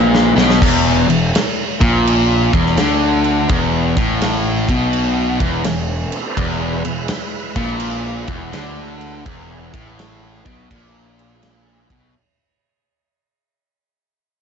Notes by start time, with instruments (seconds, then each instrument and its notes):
Already playing: picked electric bass A#1, distorted electric guitar A#2, tonewheel organ E3 G#3 B4
0.15 snare
0.36 picked electric bass B1, distorted electric guitar B2, snare
0.50 snare
0.61 picked electric bass E1, distorted electric guitar E2, kick, crash
1.08 picked electric bass E1, distorted electric guitar E2, crash
1.35 snare, crash
1.80 picked electric bass A#1, distorted electric guitar A#2, kick, crash
2.07 crash
2.53 picked electric bass E1, distorted electric guitar E2, kick, crash
2.66 snare
2.77 picked electric bass D2, distorted electric guitar D3, snare, crash
3.24 crash
3.48 picked electric bass E1, distorted electric guitar E2, kick, crash
3.97 picked electric bass A1, distorted electric guitar A2, kick, crash
4.21 snare, crash
4.68 picked electric bass B1, distorted electric guitar B2, kick, crash
4.93 crash
5.40 picked electric bass E1, distorted electric guitar E2, kick, crash
5.64 picked electric bass E1, distorted electric guitar E2, snare, crash
6.05 tonewheel organ A3
6.09 tonewheel organ B3 C4, crash
6.14 tonewheel organ D4 E4
6.21 tonewheel organ F4 G4 A4
6.29 tonewheel organ B4 C5
6.34 picked electric bass E1, distorted electric guitar E2, tonewheel organ G#3 E4 B4 D5, kick, crash
6.85 picked electric bass E1, distorted electric guitar E2, crash
7.08 snare, crash
7.56 picked electric bass A#1, distorted electric guitar A#2, kick, crash
7.80 crash
8.27 picked electric bass E1, distorted electric guitar E2, kick, crash
8.52 picked electric bass D2, distorted electric guitar D3, snare, crash
9.01 crash
9.25 picked electric bass E1, distorted electric guitar E2, tonewheel organ E4 G#4 B4, kick, crash
9.73 picked electric bass A1, distorted electric guitar A2, kick, crash
9.99 snare, crash
10.45 picked electric bass B1, distorted electric guitar B2, kick, crash
10.70 picked electric bass A#1, distorted electric guitar A#2, kick, crash
11.19 crash
11.43 snare, crash
11.90 picked electric bass B1, distorted electric guitar B2, kick, crash